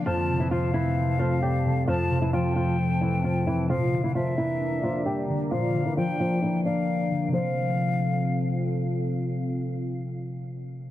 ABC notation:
X:1
M:4/4
L:1/16
Q:1/4=132
K:F
V:1 name="Flute"
a4 f12 | a4 g12 | f4 e12 | f4 g6 f6 |
f12 z4 | z16 |]
V:2 name="Analog synth pad"
[CAca]16- | [CAca]16 | [DBdb]16- | [DBdb]16 |
[CFAf]16- | [CFAf]16 |]
V:3 name="Nylon-string guitar"
[F,F]3 [E,E] [F,F]2 [E,E]4 [F,F]2 [G,G]4 | [F,F]3 [E,E] [F,F]2 [F,F]2 z2 [E,E]2 [F,F]2 [E,E]2 | [F,F]3 [E,E] [F,F]2 [E,E]4 [F,F]2 [G,G]4 | [F,F]3 [E,E] [F,F]2 [F,F]2 [E,E]2 [Dd]6 |
c12 z4 | z16 |]
V:4 name="Harp" clef=bass
F,,2 C,4 A,2 C2 A,4 C,2 | F,,2 C,2 F,2 A,2 C2 A,4 C,2 | B,,2 D,4 B,2 D2 B,4 D,2 | B,,2 D,2 F,2 B,2 D2 B,4 D,2 |
[C,F,A,C]16- | [C,F,A,C]16 |]